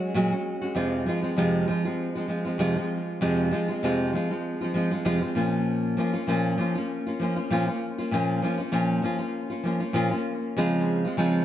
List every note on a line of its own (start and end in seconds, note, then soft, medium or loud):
0.00 0.14 F#3 medium
0.00 0.15 G#3 medium
0.00 0.15 C#4 medium
0.00 0.15 F#4 medium
0.14 0.32 A#2 medium
0.14 0.32 F#3 medium
0.14 0.33 G#3 medium
0.14 0.32 C#4 medium
0.14 0.31 F#4 medium
0.32 0.63 G#3 soft
0.32 0.62 C#4 soft
0.32 0.60 F#4 soft
0.61 0.74 G#3 soft
0.61 0.76 C#4 soft
0.61 0.76 F#4 medium
0.75 1.06 F2 medium
0.75 1.07 C3 medium
0.75 1.05 F3 medium
0.75 1.06 G#3 medium
0.75 1.07 C4 medium
0.75 1.07 F4 medium
1.06 1.23 F3 medium
1.06 1.23 G#3 medium
1.06 1.22 C4 medium
1.06 1.21 F4 medium
1.22 1.37 F3 soft
1.22 1.37 G#3 soft
1.22 1.38 C4 medium
1.22 1.37 F4 medium
1.37 1.68 F2 medium
1.37 1.69 C3 medium
1.37 1.66 F3 medium
1.37 1.67 G#3 medium
1.37 1.68 C4 medium
1.37 1.69 F4 medium
1.67 1.85 F3 medium
1.67 1.86 G#3 medium
1.67 1.85 C4 medium
1.67 1.84 F4 medium
1.85 2.16 F3 soft
1.85 2.16 G#3 soft
1.85 2.15 C4 soft
1.85 2.14 F4 soft
2.15 2.27 F3 soft
2.15 2.28 G#3 soft
2.15 2.28 C4 soft
2.15 2.29 F4 soft
2.28 2.46 F3 medium
2.28 2.46 G#3 medium
2.28 2.44 C4 medium
2.28 2.43 F4 medium
2.45 2.58 F3 soft
2.45 2.58 G#3 soft
2.45 2.59 C4 soft
2.45 2.59 F4 soft
2.58 2.76 F2 medium
2.58 2.77 C3 medium
2.58 2.77 F3 medium
2.58 2.76 G#3 medium
2.58 2.75 C4 medium
2.58 2.74 F4 medium
2.76 3.21 F3 soft
2.76 3.21 G#3 soft
2.76 3.21 C4 medium
2.76 3.21 F4 medium
3.21 3.52 F2 medium
3.21 3.53 C3 medium
3.21 3.50 F3 medium
3.21 3.51 G#3 medium
3.21 3.52 C4 medium
3.21 3.53 F4 medium
3.51 3.69 F3 medium
3.51 3.69 G#3 medium
3.51 3.69 C4 medium
3.51 3.67 F4 medium
3.68 3.82 F3 soft
3.68 3.83 G#3 soft
3.68 3.83 C4 soft
3.68 3.83 F4 medium
3.83 4.14 F2 medium
3.83 4.14 C3 medium
3.83 4.12 F3 medium
3.83 4.14 G#3 medium
3.83 4.14 C4 medium
3.83 4.15 F4 medium
4.13 4.30 F3 medium
4.13 4.31 G#3 medium
4.13 4.30 C4 medium
4.13 4.30 F4 medium
4.31 4.63 F3 soft
4.31 4.61 G#3 soft
4.31 4.61 C4 soft
4.31 4.60 F4 medium
4.61 4.73 F3 soft
4.61 4.74 G#3 soft
4.61 4.75 C4 soft
4.61 4.75 F4 soft
4.74 4.92 F3 medium
4.74 4.92 G#3 medium
4.74 4.91 C4 medium
4.74 4.90 F4 medium
4.91 5.04 F3 soft
4.91 5.04 G#3 soft
4.91 5.05 C4 soft
4.91 5.05 F4 medium
5.05 5.22 F2 medium
5.05 5.22 C3 medium
5.05 5.22 F3 medium
5.05 5.21 G#3 medium
5.05 5.21 C4 medium
5.05 5.20 F4 medium
5.21 5.34 F3 soft
5.21 5.36 G#3 soft
5.21 5.36 C4 medium
5.21 5.36 F4 medium
5.35 5.97 A#2 medium
5.35 5.96 F3 medium
5.35 5.97 A#3 medium
5.35 5.99 C#4 medium
5.35 5.99 F4 medium
5.97 6.14 F3 medium
5.97 6.15 A#3 medium
5.97 6.13 C#4 medium
5.97 6.12 F4 medium
6.13 6.27 A#3 soft
6.13 6.28 C#4 medium
6.13 6.28 F4 medium
6.27 6.58 A#2 medium
6.27 6.56 F3 medium
6.27 6.57 A#3 medium
6.27 6.58 C#4 medium
6.27 6.60 F4 medium
6.58 6.75 F3 medium
6.58 6.76 A#3 medium
6.58 6.76 C#4 medium
6.58 6.74 F4 medium
6.75 7.08 A#3 soft
6.75 7.07 C#4 soft
6.75 7.05 F4 medium
7.07 7.20 A#3 soft
7.07 7.20 C#4 soft
7.07 7.20 F4 soft
7.20 7.37 F3 medium
7.20 7.38 A#3 medium
7.20 7.37 C#4 medium
7.20 7.35 F4 medium
7.36 7.51 A#3 soft
7.36 7.51 C#4 soft
7.36 7.51 F4 medium
7.50 7.67 A#2 medium
7.50 7.68 F3 medium
7.50 7.68 A#3 medium
7.50 7.68 C#4 medium
7.50 7.66 F4 loud
7.67 8.00 A#3 soft
7.67 7.98 C#4 soft
7.67 7.97 F4 medium
7.98 8.12 A#3 soft
7.98 8.12 C#4 soft
7.98 8.12 F4 medium
8.11 8.42 A#2 medium
8.11 8.41 F3 medium
8.11 8.42 A#3 medium
8.11 8.43 C#4 medium
8.11 8.44 F4 loud
8.42 8.59 F3 medium
8.42 8.59 A#3 medium
8.42 8.59 C#4 medium
8.42 8.56 F4 medium
8.58 8.71 A#3 soft
8.58 8.72 C#4 soft
8.58 8.72 F4 medium
8.72 9.03 A#2 medium
8.72 9.01 F3 medium
8.72 9.02 A#3 medium
8.72 9.03 C#4 medium
8.72 9.04 F4 medium
9.02 9.20 F3 medium
9.02 9.20 A#3 medium
9.02 9.19 C#4 medium
9.02 9.17 F4 medium
9.19 9.51 A#3 soft
9.19 9.50 C#4 soft
9.19 9.49 F4 medium
9.50 9.64 A#3 soft
9.50 9.65 C#4 soft
9.50 9.64 F4 soft
9.64 9.81 F3 medium
9.64 9.81 A#3 medium
9.64 9.80 C#4 medium
9.64 9.79 F4 medium
9.80 9.93 A#3 soft
9.80 9.94 C#4 soft
9.80 9.94 F4 medium
9.93 10.11 A#2 medium
9.93 10.12 F3 medium
9.93 10.12 A#3 loud
9.93 10.11 C#4 medium
9.93 10.10 F4 medium
10.11 10.57 A#3 soft
10.11 10.57 C#4 medium
10.11 10.56 F4 medium
10.57 11.04 C#3 medium
10.57 11.04 F3 medium
10.57 11.05 G#3 medium
10.57 11.05 C4 medium
10.57 11.04 F4 loud
11.05 11.17 G#3 soft
11.05 11.18 C4 medium
11.05 11.18 F4 medium
11.17 11.45 C#3 medium
11.17 11.45 F3 medium
11.17 11.45 G#3 medium
11.17 11.45 C4 loud
11.17 11.45 F4 loud